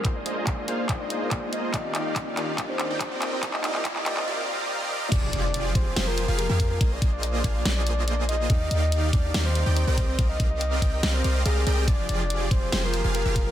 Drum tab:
CC |----------------|----------------|----------------|x---------------|
HH |x-x-x-x-x-x-x-x-|x-x-x-x-x-x-x-x-|x-x-x-x---------|x-x-x-x-x-x-x-x-|
CP |x---x---x---x---|x-x-x-x-x-x-x-x-|xxxxxxxx--------|----------------|
SD |----------------|----------------|----------------|--------o-------|
BD |o---o---o---o---|o---o---o---o---|o---o-----------|o-----o-------o-|

CC |----------------|----------------|----------------|----------------|
HH |x-x-x-x-x-x-x-x-|x-x-x-x-x-x-x-x-|x-x-x-x-x-x-x-x-|x-x-x-x-x-x-x-x-|
CP |----------------|----------------|----------------|----------------|
SD |--------o-------|--------o-------|--------o-------|--------o-------|
BD |o-o---o---------|o-----o-------o-|o-o---o---------|o-----o-------o-|